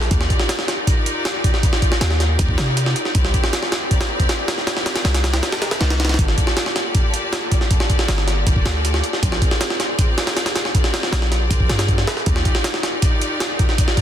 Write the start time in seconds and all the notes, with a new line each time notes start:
0.02 snare
0.11 D#2 D#4 F4 G4 A#4 D5, kick, closed hi-hat
0.21 snare
0.30 kick, closed hi-hat
0.40 snare
0.49 snare, closed hi-hat
0.59 snare
0.68 D#4 F4 G4 A#4 D5, snare, closed hi-hat
0.87 kick, closed hi-hat
1.06 closed hi-hat
1.25 snare, closed hi-hat
1.44 kick, closed hi-hat
1.54 snare
1.63 D#4 F4 G4 A#4 D5, kick, closed hi-hat
1.73 snare
1.82 kick, closed hi-hat
1.92 snare
2.01 D#2, snare, closed hi-hat
2.11 snare
2.20 D#4 F4 G4 A#4 D5, snare, closed hi-hat
2.39 D#2, kick, closed hi-hat
2.49 kick
2.58 C3, snare, closed hi-hat
2.77 closed hi-hat
2.86 snare
2.96 closed hi-hat
3.05 snare
3.15 C2 C4 E4 G4 A#4 D5, kick, closed hi-hat
3.25 snare
3.34 kick, closed hi-hat
3.44 snare
3.53 snare, closed hi-hat
3.63 snare
3.72 C4 E4 G4 A#4 D5, snare, closed hi-hat
3.91 kick, closed hi-hat
4.01 snare, closed hi-hat
4.20 kick, closed hi-hat
4.29 snare, closed hi-hat
4.48 snare, closed hi-hat
4.58 snare
4.67 C4 E4 G4 A#4 D5, snare, closed hi-hat
4.77 snare
4.86 snare, closed hi-hat
4.96 snare, closed hi-hat
5.05 C2, snare, closed hi-hat
5.14 snare, closed hi-hat
5.23 C4 E4 G4 A#4 D5, snare, closed hi-hat
5.34 snare, closed hi-hat
5.43 snare, closed hi-hat
5.52 snare, closed hi-hat
5.62 snare, closed hi-hat
5.71 snare, closed hi-hat
5.81 C2, snare, closed hi-hat
5.90 snare, closed hi-hat
6.00 C4 E4 G4 A#4 D5, snare, closed hi-hat
6.05 snare, closed hi-hat
6.09 snare, closed hi-hat
6.14 snare, closed hi-hat
6.19 G1 A#3 F4 G4 A4 D5, kick, closed hi-hat
6.28 snare
6.38 kick, closed hi-hat
6.47 snare
6.57 snare, closed hi-hat
6.66 snare
6.75 A#3 F4 G4 A4 D5, snare, closed hi-hat
6.95 kick, closed hi-hat
7.14 closed hi-hat
7.33 snare, closed hi-hat
7.52 kick, closed hi-hat
7.61 snare
7.70 A#3 F4 G4 A4 D5, kick, closed hi-hat
7.80 snare
7.90 kick, closed hi-hat
7.99 snare
8.08 G1, snare, closed hi-hat
8.18 snare
8.27 A#3 F4 G4 A4 D5, snare, closed hi-hat
8.47 G1, kick, closed hi-hat
8.56 kick
8.66 D2, snare, closed hi-hat
8.85 closed hi-hat
8.94 snare
9.04 closed hi-hat
9.13 snare
9.23 A#1 C4 F4 G#4 A#4 D5, kick, closed hi-hat
9.32 snare
9.42 kick, closed hi-hat
9.51 snare
9.61 snare, closed hi-hat
9.70 snare
9.80 C4 F4 G#4 A#4 D5, snare, closed hi-hat
9.99 kick, closed hi-hat
10.18 snare, closed hi-hat
10.27 snare, closed hi-hat
10.37 snare, closed hi-hat
10.46 snare, closed hi-hat
10.56 snare, closed hi-hat
10.65 snare
10.75 C4 F4 G#4 A#4 D5, kick, closed hi-hat
10.84 snare
10.94 snare, closed hi-hat
11.03 snare
11.12 A#1, snare, closed hi-hat
11.22 snare
11.32 C4 F4 G#4 A#4 D5, snare, closed hi-hat
11.51 A#1, kick, closed hi-hat
11.60 kick
11.69 G2, snare, closed hi-hat
11.79 snare, closed hi-hat
11.88 kick, closed hi-hat
11.98 snare
12.07 C4 F4 G#4 A#4 D5, snare, closed hi-hat
12.17 snare
12.26 D#2 D#4 F4 G4 A#4 D5, kick, closed hi-hat
12.36 snare
12.45 kick, closed hi-hat
12.55 snare
12.64 snare, closed hi-hat
12.74 snare
12.83 D#4 F4 G4 A#4 D5, snare, closed hi-hat
13.02 kick, closed hi-hat
13.21 closed hi-hat
13.40 snare, closed hi-hat
13.59 kick, closed hi-hat
13.69 snare
13.78 D#4 F4 G4 A#4 D5, kick, closed hi-hat
13.88 snare
13.97 kick, closed hi-hat